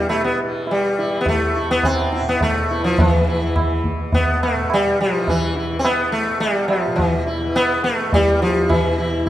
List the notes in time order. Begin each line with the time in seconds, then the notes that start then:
Already playing: E2 B2 E3
0.09 A3, tabla na
0.24 B3
0.43 E3
0.67 tabla tin
0.71 G3
0.98 E4
1.03 E3
1.21 B3
1.26 A3, tabla tin, tabla ge
1.56 E4
1.61 E2
1.71 B3
1.83 C4, tabla na, tabla ge
2.13 E4, tabla te
2.21 B2
2.29 B3
2.41 A3, tabla tin, tabla ge
2.71 E4
2.79 E3
2.84 F3
2.98 E3, tabla tin, tabla ge
3.28 E4
3.37 E3
3.56 tabla na, tabla ge
3.84 tabla ge
3.98 E2
4.13 B3, tabla tin, tabla ge
4.43 A3, tabla na
4.55 B2
4.70 G3, tabla na
5.01 F3
5.13 E3
5.28 E3, tabla tin, tabla ge
5.56 E4
5.72 E3
5.79 C4
5.85 B3, tabla na
6.12 A3
6.29 E2
6.40 G3, tabla tin
6.68 F3, tabla na
6.87 B2
6.96 E3, tabla tin, tabla ge
7.27 E4
7.46 E3
7.56 B3, tabla na
7.84 A3
8.06 E3
8.13 G3, tabla tin, tabla ge
8.42 F3
8.68 B2 E3 E4, tabla tin, tabla ge
8.97 E4
9.26 E4